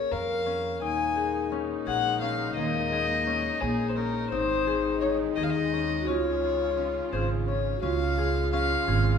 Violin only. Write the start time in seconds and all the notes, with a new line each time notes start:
Already playing: C#5
0.11 F5
0.82 G#5
1.87 F#5
2.21 F5
2.56 D#5
3.60 G#4
3.89 C5
3.96 A#4
4.30 C5
5.01 C#5
5.36 D#5
5.43 F5
5.50 D#5
6.06 C#5
7.12 C5
7.47 C#5
7.82 F5
8.53 F5